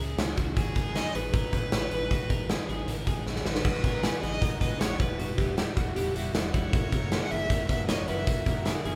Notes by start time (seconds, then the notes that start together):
Already playing: G#4
0.00 C#2 C#4 E4 G#4
0.17 C#2 E3 C#4 E4 G#4, snare, closed hi-hat
0.36 C#2 C#4 E4 F#4 G#4, kick, closed hi-hat
0.55 G#1 G#2 D#3 F#3 B3 D#4 F#4 G#4, kick, closed hi-hat
0.75 G#1 F#3 B3 D#4 G#4 A#4, kick, closed hi-hat
0.94 F#3 B3 D#4 G#4 D#5, snare, closed hi-hat
1.14 G#1 F#3 B3 D#4 G#4 B4, closed hi-hat
1.33 G#1 G#2 D#3 F#3 B3 D#4 G#4 A#4, kick, closed hi-hat
1.52 G#1 F#3 B3 D#4 G#4 B4, kick, closed hi-hat
1.72 G#1 F#3 B3 D#4 G#4 C#5, snare, closed hi-hat
1.91 G#1 F#3 B3 D#4 G#4 B4, closed hi-hat
2.10 G#1 G#2 D#3 F#3 B3 D#4 F#4 G#4, kick, closed hi-hat
2.29 G#1 F#3 B3 D#4 G#4 A#4, kick, closed hi-hat
2.49 F#3 B3 D#4 G#4, snare, closed hi-hat
2.68 G#1 F#3 B3 D#4 G#4, closed hi-hat
2.87 G#1 G#2 D#3 F#3 B3 D#4 G#4 A#4, closed hi-hat
3.06 G#1 F#3 B3 D#4 G#4, kick, closed hi-hat
3.26 G#1 F#3 B3 D#4 G#4, snare
3.36 snare
3.45 G#1 F#3 B3 D#4 F#4 G#4 B4, snare
3.55 snare
3.64 G#1 G#2 D#3 F#3 G#3 B3 D#4 F#4 G#4, kick, crash
3.83 G#1 F#3 G#3 B3 D#4 F#4 G#4 A#4, kick, closed hi-hat
4.02 F#3 G#3 B3 D#4 F#4 G#4, snare, closed hi-hat
4.22 G#1 F#3 G#3 B3 D#4 F#4 G#4 D#5, closed hi-hat
4.41 G#1 G#2 D#3 F#3 G#3 B3 D#4 F#4 G#4 A#4, kick, closed hi-hat
4.60 G#1 F#3 G#3 B3 D#4 F#4 G#4 B4 D#5, kick, closed hi-hat
4.79 G#1 F#3 G#3 B3 D#4 F#4 G#4 C#5, snare, closed hi-hat
4.98 E1 G3 B3 E4 F#4 B4, kick, closed hi-hat
5.19 E3 G3 B3 E4 F#4, closed hi-hat
5.38 E1 G3 B3 E4 F#4 G4, kick, closed hi-hat
5.57 G3 B3 E4 F#4 G4, snare, closed hi-hat
5.76 E1 G3 B3 E4 F#4, kick, closed hi-hat
5.95 E1 E3 G3 B3 E4 F#4 G4, closed hi-hat
6.15 E1 G3 B3 E4 F#4, closed hi-hat
6.34 E1 G3 B3 E4 F#4, snare, closed hi-hat
6.53 E1 G3 B3 E4 F#4 C#5, kick, closed hi-hat
6.73 F#1 F#2 C#3 E3 A#3 E4 F#4, kick, closed hi-hat
6.92 F#1 E3 A#3 E4 F#4 A#4, kick, closed hi-hat
7.11 E3 A#3 E4 F#4 G#4, snare, closed hi-hat
7.24 F#5
7.30 F#1 E3 A#3 E4 F#4 G#4 E5, closed hi-hat
7.50 F#1 F#2 C#3 E3 A#3 E4 F#4 A#4, kick, closed hi-hat
7.69 F#1 E3 A#3 E4 F#4 B4 E5, kick, closed hi-hat
7.87 F#1 E3 A#3 E4 F#4 C#5 D#5, snare, closed hi-hat
8.07 F#1 E3 A#3 E4 F#4 B4 E5, closed hi-hat
8.26 F#1 F#2 C#3 E3 A#3 E4 F#4, kick, closed hi-hat
8.45 F#1 E3 A#3 E4 F#4 A#4, kick, closed hi-hat
8.65 E3 A#3 E4 F#4 G#4, snare, closed hi-hat
8.84 F#1 E3 A#3 E4 F#4 G#4, closed hi-hat